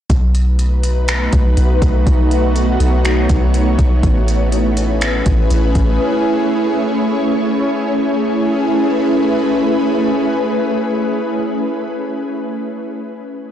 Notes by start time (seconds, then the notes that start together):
0.10 B1 A3 B3 D#4 F#4 B4, kick, closed hi-hat
0.35 closed hi-hat
0.59 closed hi-hat
0.83 closed hi-hat
1.08 finger snap, closed hi-hat
1.33 B1, kick, closed hi-hat
1.57 B1, closed hi-hat
1.82 B1, kick, closed hi-hat
2.06 B1 C#5, kick, closed hi-hat
2.31 closed hi-hat
2.56 closed hi-hat
2.80 B1, closed hi-hat
3.05 finger snap, closed hi-hat
3.29 B1, kick, closed hi-hat
3.54 closed hi-hat
3.79 B1, kick, closed hi-hat
4.03 A1 A3 C#4 E4 G#4 B4, kick, closed hi-hat
4.28 closed hi-hat
4.52 closed hi-hat
4.77 closed hi-hat
5.01 finger snap, closed hi-hat
5.26 A1, kick, closed hi-hat
5.50 A1, closed hi-hat
5.75 A1, kick, closed hi-hat
6.00 C#5
7.96 A3 C#4 E4 G#4 B4